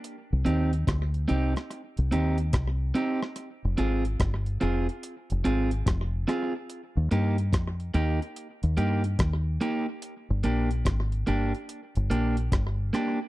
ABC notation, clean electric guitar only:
X:1
M:4/4
L:1/16
Q:"Swing 16ths" 1/4=72
K:Fdor
V:1 name="Clean electric guitar"
z2 [CEG] z3 [CEG] z3 [CEG] z3 [CEG] z | z2 [CFA] z3 [CFA] z3 [CFA] z3 [CFA] z | z2 [B,EG] z3 [B,EG] z3 [B,EG] z3 [B,EG] z | z2 [B,DG] z3 [B,DG] z3 [B,DG] z3 [B,DG] z |]